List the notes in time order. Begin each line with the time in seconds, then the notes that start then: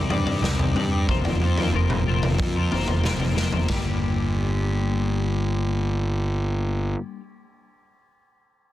Already playing: D5
0.09 G2 C4 D#4 G4 D5, floor tom
0.25 C4 D#4 G4 D5, floor tom
0.41 C2 C3 G3 C4 D#4 G4 D5, snare
0.58 C4 D#4 G4 D5, floor tom
0.74 G2 C4 D#4 G4 D5, floor tom
0.91 C4 D#4 G4 D5
1.08 F1 F3 A#3 F4 A#4 C5, kick, floor tom
1.25 floor tom
1.40 F2 A#3 F4 A#4
1.44 C5
1.57 F4 A#4 C5, floor tom
1.72 F1 F3 A#3 F4 A#4 C5
1.90 mid tom
2.06 F1 A#3 F4 A#4 C5
2.23 floor tom
2.38 F2, kick, floor tom
2.56 F4 A#4 C5
2.72 F1 A#3 F4 A#4 C5, floor tom
2.88 F4 A#4 C5, floor tom
3.04 F1 F3 A#3 F4 A#4 C5, snare, mid tom
3.20 F4 A#4 C5, floor tom
3.36 F1 A#3 F4 A#4 C5, snare
3.52 F4 A#4 C5, floor tom
3.68 G1 G3 A#3 D4, kick, snare, ride bell
3.73 G4